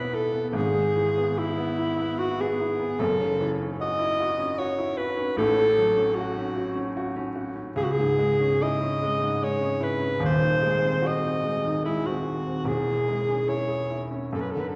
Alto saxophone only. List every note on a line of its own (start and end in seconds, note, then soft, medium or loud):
0.00 0.16 B4 medium
0.15 0.48 A4 loud
0.50 0.57 A4 medium
0.55 1.40 G#4 loud
1.38 2.20 E4 medium
2.18 2.42 F#4 loud
2.41 3.01 G#4 medium
3.00 3.53 A4 loud
3.81 4.60 D#5 loud
4.58 4.99 C#5 medium
4.97 5.38 B4 loud
5.38 6.17 A4 loud
6.15 6.96 F#4 medium
7.77 7.85 G#4 loud
7.84 7.93 F#4 medium
7.92 8.64 G#4 loud
8.63 9.45 D#5 loud
9.44 9.85 C#5 loud
9.83 10.23 B4 loud
10.25 11.08 C5 loud
11.07 11.85 D#5 loud
11.85 12.08 E4 medium
12.06 12.69 F#4 medium
12.68 13.50 G#4 loud
13.49 14.05 C#5 medium
14.34 14.42 A4 medium
14.41 14.52 B4 medium
14.51 14.62 A4 medium
14.60 14.70 B4 medium
14.69 14.76 A4 medium